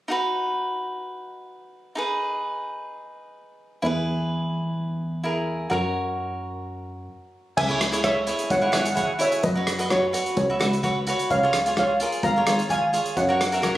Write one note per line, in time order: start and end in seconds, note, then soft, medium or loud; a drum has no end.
0.08 1.92 D#4 medium
0.08 1.93 F#4 soft
0.08 1.94 B4 medium
1.95 3.79 D#4 medium
1.95 3.80 G#4 medium
1.95 3.81 B4 medium
3.82 5.67 E2 medium
3.82 5.21 E4 medium
3.82 5.22 G#4 medium
3.82 5.23 B4 medium
5.23 5.69 E4 soft
5.23 5.71 G#4 soft
5.23 5.70 A#4 soft
5.70 7.08 F#2 medium
5.70 7.54 F#4 medium
5.70 7.54 A#4 medium
5.70 7.55 C#5 medium
7.57 8.29 C#2 loud
7.57 8.01 E5 medium
7.57 8.06 G#5 loud
7.57 kick loud
7.57 crash medium
7.69 7.83 E4 medium
7.69 7.83 G#4 medium
7.69 7.84 C#5 medium
7.81 cross-stick medium
7.81 closed hi-hat medium
7.92 7.99 E4 medium
7.92 8.00 G#4 medium
7.92 8.00 C#5 medium
7.92 closed hi-hat medium
8.04 8.19 E4 medium
8.04 8.19 G#4 medium
8.04 8.48 C#5 medium
8.04 8.19 C#5 medium
8.04 8.52 E5 medium
8.04 kick medium
8.04 cross-stick medium
8.04 closed hi-hat medium
8.27 8.49 E4 medium
8.27 8.49 G#4 medium
8.27 8.50 C#5 medium
8.27 closed hi-hat medium
8.39 closed hi-hat medium
8.50 8.69 G#1 loud
8.50 8.58 C#5 medium
8.50 8.57 F#5 loud
8.50 kick loud
8.50 closed hi-hat medium
8.59 8.69 E4 medium
8.59 8.70 G#4 medium
8.59 8.65 F#5 medium
8.63 8.70 C#5 medium
8.63 8.72 F#5 medium
8.72 9.28 G#1 loud
8.72 8.88 E4 medium
8.72 8.88 G#4 medium
8.72 8.88 C#5 medium
8.72 8.81 F#5 medium
8.72 cross-stick medium
8.72 closed hi-hat medium
8.82 8.88 F#5 medium
8.82 closed hi-hat medium
8.89 8.94 F#5 medium
8.95 9.11 E4 medium
8.95 9.11 G#4 medium
8.95 9.12 C#5 medium
8.95 9.03 F#5 medium
8.95 kick medium
8.95 closed hi-hat medium
9.04 9.12 F#5 medium
9.19 9.41 E4 medium
9.19 9.41 G#4 medium
9.19 9.42 C#5 medium
9.19 9.43 C#5 medium
9.19 9.43 E5 medium
9.19 closed hi-hat medium
9.32 closed hi-hat medium
9.43 10.15 F#2 loud
9.43 9.87 B4 medium
9.43 9.92 D#5 loud
9.43 kick loud
9.43 closed hi-hat medium
9.55 9.70 F#4 medium
9.55 9.70 B4 medium
9.55 9.70 C#5 medium
9.67 cross-stick medium
9.67 closed hi-hat medium
9.78 9.86 F#4 medium
9.78 9.86 B4 medium
9.78 9.87 D#5 medium
9.78 closed hi-hat medium
9.90 10.34 F#4 medium
9.90 10.05 F#4 medium
9.90 10.05 B4 medium
9.90 10.36 C#5 medium
9.90 10.06 C#5 medium
9.90 kick medium
9.90 cross-stick medium
9.90 closed hi-hat medium
10.13 10.35 F#4 medium
10.13 10.35 B4 medium
10.13 10.36 C#5 medium
10.13 closed hi-hat medium
10.26 closed hi-hat medium
10.36 10.55 C#2 loud
10.36 11.03 F#4 medium
10.36 11.03 C#5 medium
10.36 kick loud
10.36 closed hi-hat medium
10.50 10.56 F#4 medium
10.50 10.57 B4 medium
10.50 10.57 E5 medium
10.59 11.14 C#2 loud
10.59 10.74 F#4 medium
10.59 10.75 B4 medium
10.59 10.75 E5 medium
10.59 cross-stick medium
10.59 closed hi-hat medium
10.73 closed hi-hat medium
10.83 10.98 F#4 medium
10.83 10.98 B4 medium
10.83 10.99 C#5 medium
10.83 kick medium
10.83 closed hi-hat medium
11.07 11.28 F#4 medium
11.07 11.29 B4 medium
11.07 11.29 C#5 medium
11.07 closed hi-hat medium
11.19 closed hi-hat medium
11.30 12.02 C#2 medium
11.30 11.75 C#5 medium
11.30 11.74 F5 loud
11.30 kick loud
11.30 closed hi-hat medium
11.43 11.57 F4 medium
11.43 11.57 G#4 medium
11.43 11.57 C#5 medium
11.53 cross-stick medium
11.53 closed hi-hat medium
11.66 11.73 F4 medium
11.66 11.73 G#4 medium
11.66 11.74 C#5 medium
11.66 closed hi-hat medium
11.77 11.92 F4 medium
11.77 11.92 G#4 medium
11.77 12.22 C#5 medium
11.77 11.93 C#5 medium
11.77 12.23 F5 medium
11.77 kick medium
11.77 cross-stick medium
11.77 closed hi-hat soft
12.00 12.21 F4 medium
12.00 12.22 G#4 medium
12.00 12.22 A#4 medium
12.00 closed hi-hat medium
12.12 closed hi-hat medium
12.23 12.41 G#1 loud
12.23 12.68 F5 medium
12.23 12.67 A#5 loud
12.23 kick loud
12.23 closed hi-hat medium
12.36 12.43 F4 medium
12.36 12.43 G#4 medium
12.36 12.44 C#5 medium
12.46 13.01 G#1 loud
12.46 12.61 F4 medium
12.46 12.61 G#4 medium
12.46 12.62 C#5 medium
12.46 cross-stick medium
12.46 closed hi-hat medium
12.59 closed hi-hat medium
12.69 12.84 F4 medium
12.69 12.84 G#4 medium
12.69 12.85 C#5 medium
12.69 13.14 F5 medium
12.69 13.18 G#5 loud
12.69 kick medium
12.69 closed hi-hat medium
12.93 13.14 F4 medium
12.93 13.15 G#4 medium
12.93 13.15 C#5 medium
12.93 closed hi-hat medium
13.06 closed hi-hat medium
13.17 13.78 F#2 loud
13.17 13.24 C#5 medium
13.17 13.24 F#5 medium
13.17 kick loud
13.17 closed hi-hat medium
13.26 13.43 F#4 medium
13.26 13.43 A#4 medium
13.26 13.30 F#5 medium
13.30 13.43 C#5 medium
13.30 13.37 F#5 medium
13.38 13.46 F#5 medium
13.38 cross-stick medium
13.38 closed hi-hat medium
13.47 13.54 F#5 medium
13.52 13.59 F#4 medium
13.52 13.59 A#4 medium
13.52 13.60 E5 medium
13.52 13.59 F#5 medium
13.52 closed hi-hat medium
13.61 13.77 F#4 medium
13.61 13.77 A#4 medium
13.61 13.78 C#5 medium
13.61 13.67 F#5 medium
13.61 kick medium
13.61 cross-stick medium
13.61 closed hi-hat medium
13.68 13.76 F#5 medium